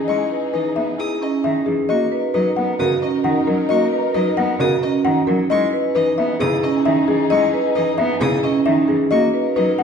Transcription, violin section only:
Already playing: D#4 G#4
1.89 D#4 A#4
5.50 D#4 G#4
9.12 D#4 A#4

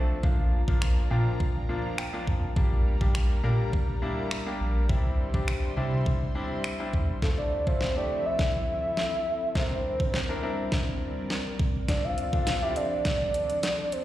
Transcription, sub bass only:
Already playing: B1
0.23 A#1
0.68 A#1
1.11 A#2
2.27 F2
2.56 A#1
3.01 A#1
3.44 A#2
4.60 A#1
4.89 C2
5.34 C2
5.77 C3
6.93 E2

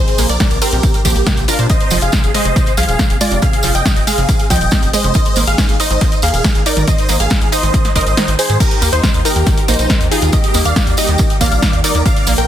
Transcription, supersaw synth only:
Already playing: G#4 C5
0.30 A#4 D5
0.62 G4 A#4
1.05 A#3 G4
1.48 D4 F4
1.70 C5 D#5
2.02 G#4 F5
2.35 C5 D#5
2.78 G#4 F5
3.21 F4 D5
3.43 G#4 F5
3.75 D#5 G5
4.07 G#4 F5
4.50 D#5 G5
4.94 C5 D#5
5.47 G#4 F5
5.80 C5 D#5
6.23 G#4 F5
6.66 A#4 D5
6.88 C5 D#5
7.20 G#4 F5
7.52 C5 D#5
7.96 C5 D#5
8.39 G#4 C5
8.60 G4 A#4
8.93 D#4 C5
9.25 G4 A#4
9.68 D#4 C5
10.11 F4 G#4
10.33 G4 D#5
10.65 D5 F5
10.98 G4 D#5
11.41 D5 F5
11.84 A#4 D5
12.06 D5 F5
12.38 A#4 G5

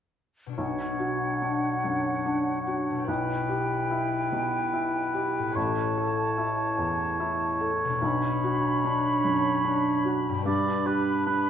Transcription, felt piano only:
0.58 B1
0.99 F#4
1.42 D4
1.84 F#2
2.26 D4
2.67 F#4
3.08 B1
3.49 G4
3.91 E4
4.32 B2
4.74 E4
5.14 G4
5.56 A1
5.97 A4
6.38 E4
6.78 E2
7.20 E4
7.61 A4
8.02 B1
8.44 F#4
8.85 D4
9.24 F#2
9.65 D4
10.05 F#4
10.45 G2
10.85 G4
11.27 D4

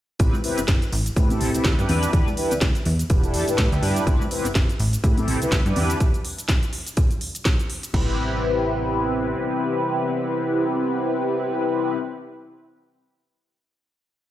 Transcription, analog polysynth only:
0.19 C4 E4 G4 B4
0.44 C4 E4 G4 B4
1.16 C4 E4 G4 B4
1.30 C4 E4 G4 A4
1.54 C4 E4 G4 B4
1.78 D4 E4 G4 B4
2.13 D4 E4 G4 B4
2.37 D4 E4 G4 B4
3.10 D4 E4 G4 B4
3.24 D4 E4 G4 A4
3.48 D4 E4 G4 B4
3.72 D4 E4 G4 B4
4.07 C4 E4 G4 B4
4.31 C4 E4 G4 B4
5.04 C4 E4 G4 B4
5.17 C4 E4 G4 A4
5.42 C4 E4 G4 B4
5.66 D4 E4 G4 B4
7.93 C4 E4 G4 B4

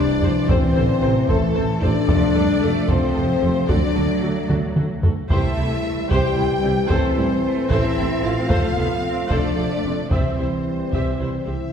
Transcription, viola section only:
0.23 G4 C5
0.49 A4 C5
0.76 A4 C5
1.02 A4 C5
1.29 A4 C5
1.55 A4 C5
1.82 A4 C5
2.09 A4
2.36 A4
2.61 A4
2.88 A4
3.14 A4
3.41 A4
3.67 F#4 A4
3.94 F#4 A4
4.22 F#4 A4
4.50 F#4 A4
4.76 F#4 A4
5.03 F#4 A4
5.31 G4 C5
5.58 E4 G4
6.10 G4 C5
6.37 E4 G4
6.64 C4 E4
6.90 A4 C5
7.17 E4 A4
7.71 A4 C5
7.98 E4 A4
8.24 C4 E4
8.50 A4 C5
8.77 F4 A4
9.30 A4 C5
9.58 F4 A4
9.85 C4 F4
10.11 G4 E5
10.39 E4 C5
10.92 G4 E5
11.20 E4 C5
11.47 C4 G4

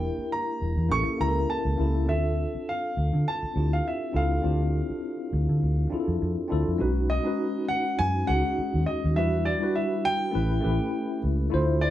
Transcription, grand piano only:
Already playing: G5
0.32 A#5
0.92 C#6
1.21 A#5
1.50 A5
2.09 E5
2.69 F5
3.28 A5
3.73 F5
3.88 E5
4.16 F5
7.10 D#5
7.68 F#5
7.99 G#5
8.27 F#5
8.86 D#5
9.16 E5
9.45 D5
9.75 E5
10.05 G5
11.81 D5

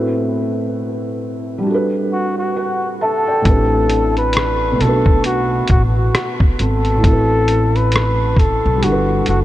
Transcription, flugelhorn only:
2.12 F#4
2.38 F#4
3.02 A4
4.18 B4
4.82 A4
5.26 F#4
5.71 F#4
5.97 F#4
6.60 A4
7.76 B4
8.39 A4
8.84 F#4
9.29 F#4

